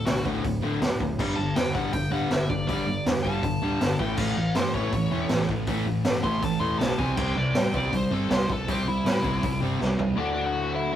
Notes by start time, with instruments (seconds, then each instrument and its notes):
0.05 picked electric bass B1, overdriven electric guitar D2 A2, lead electric guitar F#4, snare, open hi-hat
0.25 picked electric bass D1, overdriven electric guitar D2 A2 D3, kick
0.44 picked electric bass D1, overdriven electric guitar D2 A2, kick, open hi-hat
0.62 picked electric bass A1, overdriven electric guitar D2 A2 D3
0.81 picked electric bass D1, overdriven electric guitar D2 A2, snare, open hi-hat
1.00 picked electric bass D1, overdriven electric guitar D2 A2, kick
1.19 picked electric bass G1, overdriven electric guitar G2 D3 G3, kick, crash
1.36 picked electric bass G1, overdriven electric guitar G2 D3, lead electric guitar A5
1.55 picked electric bass E2, overdriven electric guitar G2 D3, lead electric guitar G5, snare, open hi-hat
1.74 picked electric bass G1, overdriven electric guitar G2 D3 G3, lead electric guitar F#5, kick
1.93 picked electric bass G1, overdriven electric guitar G2 D3, lead electric guitar G5, kick, open hi-hat
2.11 picked electric bass D1, overdriven electric guitar G2 D3 G3, lead electric guitar F#5
2.31 picked electric bass G1, overdriven electric guitar G2 D3, lead electric guitar E5, snare, open hi-hat
2.49 picked electric bass G1, overdriven electric guitar G2 D3, lead electric guitar D5, kick
2.68 picked electric bass G1, overdriven electric guitar G2 D3 G3, lead electric guitar D5, kick, open hi-hat
2.86 picked electric bass G1, overdriven electric guitar G2 D3
3.05 picked electric bass E2, overdriven electric guitar G2 D3, snare, open hi-hat
3.23 picked electric bass G1, overdriven electric guitar G2 D3 G3, lead electric guitar A5, kick
3.43 picked electric bass G1, overdriven electric guitar G2 D3, kick, open hi-hat
3.62 picked electric bass D1, overdriven electric guitar G2 D3 G3
3.80 picked electric bass G1, overdriven electric guitar G2 D3, snare, open hi-hat
3.99 picked electric bass A1, overdriven electric guitar A2 E3 A3, lead electric guitar G5, kick
4.17 picked electric bass A1, overdriven electric guitar A2 E3 A3, lead electric guitar F5, kick, crash
4.37 picked electric bass A1, overdriven electric guitar A2 E3, lead electric guitar F5
4.55 picked electric bass G2, overdriven electric guitar A2 E3, distorted electric guitar A3, lead electric guitar C5, snare, open hi-hat
4.74 picked electric bass A1, overdriven electric guitar A2 E3 A3, lead electric guitar C#5, kick
4.92 picked electric bass A1, overdriven electric guitar A2 E3, distorted electric guitar A3, kick, open hi-hat
5.11 picked electric bass E1, overdriven electric guitar A2 E3 A3
5.29 picked electric bass A1, overdriven electric guitar A2 E3, distorted electric guitar A3, snare, open hi-hat
5.49 picked electric bass A1, overdriven electric guitar A2 E3, distorted electric guitar A3, kick
5.67 picked electric bass A1, overdriven electric guitar A2 E3 A3, kick, open hi-hat
5.86 picked electric bass A1, overdriven electric guitar A2 E3
6.03 picked electric bass G2, overdriven electric guitar A2 E3, distorted electric guitar A3, snare, open hi-hat
6.23 picked electric bass A1, overdriven electric guitar A2 E3 A3, lead electric guitar C6, kick
6.41 picked electric bass A1, overdriven electric guitar A2 E3, distorted electric guitar A3, lead electric guitar A5, kick, open hi-hat
6.60 picked electric bass E1, overdriven electric guitar A2 E3 A3, lead electric guitar C6
6.79 picked electric bass B1, overdriven electric guitar A2 E3, distorted electric guitar A3, lead electric guitar A5, snare, open hi-hat
6.98 picked electric bass C2, overdriven electric guitar C3 G3 C4, lead electric guitar G#5, kick
7.16 picked electric bass C2, overdriven electric guitar C3 G3 C4, lead electric guitar G5, kick, crash
7.35 picked electric bass C2, overdriven electric guitar C3 G3, lead electric guitar D5
7.55 picked electric bass A2, overdriven electric guitar C3 G3, distorted electric guitar C4, lead electric guitar G5, snare, open hi-hat
7.74 picked electric bass C2, overdriven electric guitar C3 G3 C4, lead electric guitar D5, kick
7.92 picked electric bass C2, overdriven electric guitar C3 G3, distorted electric guitar C4, lead electric guitar C5, kick, open hi-hat
8.11 picked electric bass G1, overdriven electric guitar C3 G3 C4, lead electric guitar A4
8.30 picked electric bass C2, overdriven electric guitar C3 G3, distorted electric guitar C4, lead electric guitar C5, snare, open hi-hat
8.48 picked electric bass C2, overdriven electric guitar C3 G3, distorted electric guitar C4, kick
8.53 lead electric guitar A4
8.68 picked electric bass C2, overdriven electric guitar C3 G3 C4, lead electric guitar G4, kick, open hi-hat
8.85 picked electric bass C2, overdriven electric guitar C3 G3, lead electric guitar E4
9.04 picked electric bass A2, overdriven electric guitar C3 G3, distorted electric guitar C4, snare, open hi-hat
9.23 picked electric bass C2, overdriven electric guitar C3 G3 C4, kick
9.43 picked electric bass C2, overdriven electric guitar C3 G3, distorted electric guitar C4, kick, open hi-hat
9.61 picked electric bass G1, overdriven electric guitar C3 G3 C4
9.80 picked electric bass C2, overdriven electric guitar C3 G3, distorted electric guitar C4, snare
9.98 picked electric bass C2, overdriven electric guitar C3 G3, distorted electric guitar C4, floor tom
10.16 overdriven electric guitar D2 A2 D3 A3 F#4, lead electric guitar D4 D5
10.46 lead electric guitar F#4 F#5
10.76 lead electric guitar E4 E5
10.91 overdriven electric guitar D2